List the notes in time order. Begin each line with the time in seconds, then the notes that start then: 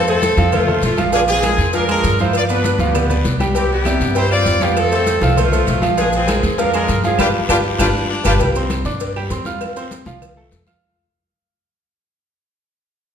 Already playing: F2
0.07 A3 C4 A4 C5, high conga, maracas
0.22 cowbell, high conga, short guiro, maracas
0.37 F2 F3 F4 F5, high conga, short guiro, maracas
0.52 A3 F4 A4 C5, cowbell, high conga, low conga, long guiro, claves, maracas
0.68 A3 A4 C5, high conga, low conga
0.82 A#1 A3 F4, cowbell, high conga, short guiro, maracas
0.97 F3 F4 F5, cowbell, high conga, short guiro, claves, maracas
1.12 F3 D4 F4 G#4 F5, cowbell, high conga, long guiro, maracas
1.28 C4 G#4, high conga, maracas
1.42 G#3 G#4 A#4, cowbell, high conga, short guiro, claves, maracas
1.58 F2, high conga, short guiro, maracas
1.73 F3 D4 F4 A#4 F5, cowbell, high conga, long guiro, maracas
1.89 G#3 D4 G#4 A#4, high conga, claves, maracas
2.04 G2, cowbell, high conga, short guiro, maracas
2.19 F3 E4 F4 C5 F5, high conga, short guiro, maracas
2.33 F4 D5, cowbell, high conga, long guiro, claves, maracas
2.49 B3 D4 B4 D5, high conga, maracas
2.64 cowbell, high conga, short guiro, maracas
2.78 D2 F3 B3 F4 F5, high conga, short guiro, maracas
2.82 G4
2.94 B3 B4 D5, cowbell, high conga, low conga, long guiro, claves, maracas
3.10 B3 B4 D5, high conga, low conga, maracas
3.24 C2, cowbell, high conga, short guiro, maracas
3.40 G3 G4 G5, cowbell, high conga, short guiro, claves, maracas
3.55 G3 C4 G4 G5, cowbell, high conga, long guiro, maracas
3.71 B3 G4, high conga
3.85 C3 D5 E5, cowbell, high conga, short guiro, claves, maracas
4.00 G2, high conga, short guiro, maracas
4.15 G3 E4 G4 C5 G5, cowbell, high conga, long guiro, maracas
4.31 C4 F4 C5 D5, high conga, claves
4.45 F2, cowbell, high conga, short guiro, maracas
4.60 F3 B3 F4 G4 F5, high conga, short guiro, maracas
4.76 C4 A4, cowbell, high conga, long guiro, claves, maracas
4.92 A3 C4 A4 C5, high conga, maracas
5.07 cowbell, high conga, short guiro, maracas
5.21 C2 F3 F4 F5, high conga, short guiro, maracas
5.36 A3 F4 A4 C5, cowbell, high conga, low conga, long guiro, claves, maracas
5.52 A3 A4 C5, high conga, low conga, maracas
5.67 A#1 A3 F4, cowbell, high conga, short guiro, maracas
5.82 F3 F4 F5, cowbell, high conga, short guiro, claves, maracas
5.97 F3 D4 F4 G#4 F5, cowbell, high conga, long guiro, maracas
6.13 C4 G#4, high conga, maracas
6.27 G#3 G#4 A#4, cowbell, high conga, short guiro, claves, maracas
6.43 F2, high conga, short guiro, maracas
6.58 F3 D4 F4 A#4 F5, cowbell, high conga, long guiro, maracas
6.73 G#3 D4 G#4 A#4, high conga, claves, maracas
6.88 G2, cowbell, high conga, short guiro, maracas
7.04 F3 C4 F4 G#4 F5, high conga, short guiro, maracas
7.19 G1 D4 F4 G4 B4, cowbell, high conga, long guiro, claves, maracas
7.49 G1 D4 F4 G4 B4, cowbell, high conga, long guiro, claves, maracas
7.79 G1 D4 F4 G4 B4, cowbell, high conga, long guiro, claves, maracas
8.10 D4
8.24 G1 D4 F4 G4 B4, cowbell, high conga, long guiro, claves, maracas
8.40 C2 G3 G4 G5, cowbell, high conga, long guiro, maracas
8.55 C4 C5 C6, high conga, maracas
8.70 cowbell, high conga, short guiro, claves, maracas
8.85 G2 D4 D5 D6, high conga, short guiro, maracas
9.00 cowbell, high conga, long guiro, maracas
9.16 G3 G4 G5, high conga, claves
9.30 F2 C4 C5 C6, cowbell, high conga, short guiro, maracas
9.45 F4 F5 F6, high conga, short guiro, maracas
9.60 cowbell, high conga, long guiro, claves, maracas
9.76 C4 C5 C6, high conga, maracas
9.91 cowbell, high conga, short guiro, maracas
10.05 C2 F3 F4 F5, high conga, short guiro, maracas
10.21 cowbell, high conga, low conga, long guiro, claves, maracas
10.37 A3 A4 A5, high conga
10.51 F2, cowbell, high conga, short guiro, maracas
10.67 F4 F5 F6, cowbell, high conga, short guiro, claves